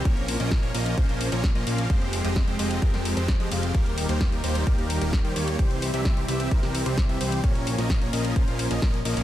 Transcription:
<<
  \new Staff \with { instrumentName = "Analog synth pad" } { \time 4/4 \key bes \dorian \tempo 4 = 130 << { <bes f'>1 | <f aes c'>1 | <ees ees' bes'>1 | <c c'>1 |
<bes f'>1 | } \\ { des'1 | g'1~ | g'1 | e'1 |
des'1 | } >> }
  \new Staff \with { instrumentName = "Supersaw synth" } { \time 4/4 \key bes \dorian <f bes des' bes' des''>8. <f bes des' bes' ees''>8 <f bes des' bes' des''>16 <f bes des' bes' ees''>8 <f bes des' bes' c''>16 <f bes des' bes' c''>8 <f bes des' bes' des''>16 r16 <f bes des' bes' ees''>16 <f bes des' bes' f''>8 | <f aes c' g' c''>8. <f aes c' g' ees''>8 <f aes c' g' c''>16 <f aes c' g' ees''>8 <f aes c' g' bes'>16 <f aes c' g' bes'>8 <f aes c' g' c''>16 r16 <f aes c' g' ees''>16 <f aes c' g' f''>8 | <ees g bes g' bes'>8. <ees g bes g' c''>8 <ees g bes g' bes'>16 <ees g bes g' c''>8 <ees g bes g' bes'>16 <ees g bes g' bes'>8 <ees g bes g' bes'>16 r16 <ees g bes g' c''>16 <ees g bes g' des''>8 | <e g c' g' c''>8. <e g c' g' e''>8 <e g c' g' c''>16 <e g c' g' e''>8 <e g c' g' bes'>16 <e g c' g' bes'>8 <e g c' g' c''>16 r16 <e g c' g' e''>16 <e g c' g' c''>8 |
<f bes des' bes' des''>8. <f bes des' bes' ees''>8 <f bes des' bes' des''>16 <f bes des' bes' ees''>8 <f bes des' bes' c''>16 <f bes des' bes' c''>8 <f bes des' bes' ees''>16 <f bes des' bes' ees''>16 r16 <f bes des' bes' ees''>16 <f bes des' bes' f''>16 | }
  \new Staff \with { instrumentName = "Analog synth bass" } { \clef bass \time 4/4 \key bes \dorian bes,,8. bes,,8 bes,,16 bes,,8 bes,,16 bes,,8 bes,,8 bes,,16 bes,,8 | f,,8. f,,8 f,,16 f,,8 f,,16 f,,8 f,,8 f,16 f,,8 | ees,,8. ees,,8 ees,,16 ees,,8 ees,,16 ees,,8 ees,,8 ees,16 ees,8 | c,8. c,8 c,16 c,8 c,16 c,8 c,8 c,16 c,8 |
bes,,8. bes,,8 bes,,16 bes,,8 bes,,16 bes,,8 bes,,16 bes,,8 bes,,16 bes,,16 | }
  \new DrumStaff \with { instrumentName = "Drums" } \drummode { \time 4/4 <hh bd>16 hh16 hho16 hh16 <hh bd sn>16 hh16 hho16 hh16 <hh bd>16 hh16 hho16 hh16 <hh bd sn>16 hh16 hho16 hh16 | <hh bd>16 hh16 hho16 hh16 <hh bd sn>16 hh16 hho16 hh16 <hh bd>16 <hh sn>16 hho16 hh16 <hh bd sn>16 hh16 hho16 hh16 | <hh bd>16 hh16 hho16 hh16 <hh bd sn>16 hh16 hho16 hh16 <hh bd>16 hh16 hho16 hh16 <hh bd sn>16 hh16 hho16 hh16 | <hh bd>16 hh16 hho16 hh16 <hh bd sn>16 hh16 hho16 hh16 <hh bd>16 <hh sn>16 hho16 hh16 <hh bd sn>16 hh16 hho16 hh16 |
<hh bd>16 hh16 hho16 <hh sn>16 <hh bd sn>16 hh16 hho16 hh16 <hh bd>16 hh16 hho16 hh16 <hh bd sn>16 hh16 hho16 hh16 | }
>>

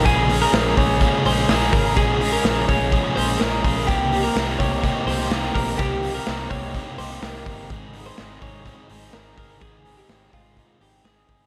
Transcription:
<<
  \new Staff \with { instrumentName = "Clean electric guitar" } { \time 4/4 \key c \phrygian \tempo 4 = 126 aes'8. bes'8. des''4 c''8 bes'8 bes'8 | aes'8. bes'8. des''4 c''8 bes'4 | g'8. bes'8. des''4 c''8 bes'8 bes'8 | g'8. bes'8. des''4 c''8 bes'4 |
aes'8. c''8. des''4 c''8 bes'8 bes'8 | aes'8. g'8. f'4 g'8 aes'4 | }
  \new Staff \with { instrumentName = "Overdriven electric guitar" } { \time 4/4 \key c \phrygian <bes, f aes des' aes'>8 <aes des' aes'>8 <f aes des' aes'>8 <aes des' aes'>8 <bes, f aes des' aes'>8 <aes des' aes'>8 <f aes des' aes'>8 <aes des' aes'>8 | <bes, f aes des' aes'>8 <aes des' aes'>8 <f aes des' aes'>8 <aes des' aes'>8 <bes, f aes des' aes'>8 <aes des' aes'>8 <f aes des' aes'>8 <aes des' aes'>8 | <c ees bes c' g'>8 <bes c' g'>8 <ees bes c' g'>8 <bes c' g'>8 <c ees bes c' g'>8 <bes c' g'>8 <ees bes c' g'>8 <bes c' g'>8 | <c ees bes c' g'>8 <bes c' g'>8 <ees bes c' g'>8 <bes c' g'>8 <c ees bes c' g'>8 <bes c' g'>8 <ees bes c' g'>8 <bes c' g'>8 |
<aes, ees aes c' ees' aes'>8 <aes c' ees' aes'>8 <aes c' ees' aes'>8 <aes c' ees' aes'>8 <aes, ees aes c' ees' aes'>8 <aes c' ees' aes'>8 <aes c' ees' aes'>8 <aes c' ees' aes'>8 | <aes, ees aes c' ees' aes'>8 <aes c' ees' aes'>8 <aes c' ees' aes'>8 <aes c' ees' aes'>8 <aes, ees aes c' ees' aes'>8 <aes c' ees' aes'>8 <aes c' ees' aes'>8 <aes c' ees' aes'>8 | }
  \new Staff \with { instrumentName = "String section" } { \clef bass \time 4/4 \key c \phrygian << { <des aes'>1~ | <des aes'>1 | <c ees'>1~ | <c ees'>1~ |
<c ees'>1~ | <c ees'>1 | } \\ { bes1~ | bes1~ | bes1~ | bes1 |
aes1 | aes1 | } >> }
  \new Staff \with { instrumentName = "Fingered electric bass" } { \clef bass \time 4/4 \key c \phrygian bes,,4 bes,,8 bes,,8. r16 bes,,8 bes,,8 aes,,8 | bes,,4 bes,,8 bes,,8. r16 bes,,8 bes,,8 bes,,8 | c,4 c,8 c,8. r16 c,8 c,8 bes,,8 | c,4 c,8 c,8. r16 c,8 c,8 g,,8 |
aes,,4 aes,,8 aes,,8. r16 aes,,8 aes,,8 g,,8 | aes,,4 aes,,8 aes,,8. r16 aes,,8 aes,,8 g,,8 | }
  \new DrumStaff \with { instrumentName = "Drums" } \drummode { \time 4/4 <hho hhp bd>8 <hho hhp>8 <hho hhp sn>8 <hho hhp bd>8 <hho hhp bd sn>8 <hho hhp>8 <hho hhp sn>8 <hho hhp bd>8 | <hho hhp bd>8 <hho hhp>8 <hho hhp sn>8 <hho hhp bd>8 <hho hhp bd>8 <hho hhp>8 <hho hhp sn>8 <hho hhp bd>8 | <hho hhp bd>8 <hho hhp>8 <hho hhp sn>8 <hho hhp bd>8 <hho hhp bd sn>8 <hho hhp>8 <hho hhp sn>8 <hho hhp bd>8 | <hho hhp bd>8 <hho hhp>8 <hho hhp sn>8 <hho hhp bd>8 <hho hhp bd sn>8 <hho hhp>8 <hho hhp sn>8 <hho hhp bd>8 |
<hho hhp bd>8 <hho hhp>8 <hho hhp sn>8 <hho hhp bd>8 <hho hhp bd sn>8 <hho hhp>8 <hho hhp sn>8 <hho hhp bd>8 | <hho hhp bd>8 <hho hhp>8 <hho hhp sn>8 <hho hhp bd>8 <hho hhp bd sn>8 <hho hhp>8 <hho hhp sn>8 <hho hhp bd>8 | }
>>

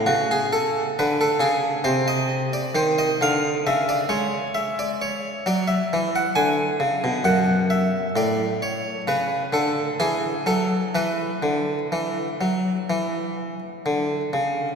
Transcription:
<<
  \new Staff \with { instrumentName = "Harpsichord" } { \time 4/4 \key e \mixolydian \tempo 4 = 66 fis'16 gis'16 a'8 b'16 a'16 gis'8 c''16 ees''8 d''16 c''16 ees''16 f''8 | e''16 d''16 cis''8 e''16 d''16 cis''8 d''16 e''8 fis''16 gis''4 | fis''8 e''8 d''8 cis''8 b'8 a'8 gis'8 a'8 | b'2. r4 | }
  \new Staff \with { instrumentName = "Harpsichord" } { \clef bass \time 4/4 \key e \mixolydian cis4 d8 cis8 c4 ees8 d8 | cis8 gis4. fis8 e8 d8 cis16 b,16 | fis,4 a,4 cis8 d8 e8 fis8 | e8 d8 e8 fis8 e4 d8 cis8 | }
>>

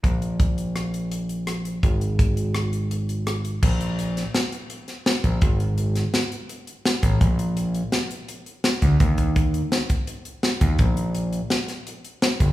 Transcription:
<<
  \new Staff \with { instrumentName = "Picked electric bass" } { \clef bass \time 5/4 \key bes \mixolydian \tempo 4 = 167 bes,,1~ bes,,4 | aes,,1~ aes,,4 | bes,,2 r2 r8 bes,,8 | aes,,2 r2 r8 a,,8 |
bes,,2 r2 r8 d,8 | ees,2 r2 r8 ees,8 | bes,,2 r2 r8 g,,8 | }
  \new DrumStaff \with { instrumentName = "Drums" } \drummode { \time 5/4 <hh bd>8 hh8 <hh bd>8 hh8 <hh ss>8 hh8 hh8 hh8 <hh ss>8 hh8 | <hh bd>8 hh8 <hh bd>8 hh8 <hh ss>8 hh8 hh8 hh8 <hh ss>8 hh8 | <cymc bd>8 hh8 hh8 <hh sn>8 <hh sn>8 hh8 hh8 <hh sn>8 <hh sn>8 <hh bd>8 | <hh bd>8 hh8 hh8 <hh sn>8 <hh sn>8 hh8 hh8 hh8 <hh sn>8 <hh bd>8 |
<hh bd>8 hh8 hh8 hh8 <hh sn>8 hh8 hh8 hh8 <hh sn>8 <hh bd>8 | <hh bd>8 <hh bd>8 <hh bd>8 hh8 <hh sn>8 <hh bd>8 hh8 hh8 <hh sn>8 <hh bd>8 | <hh bd>8 hh8 hh8 hh8 <hh sn>8 <hh sn>8 hh8 hh8 <hh sn>8 <hh bd>8 | }
>>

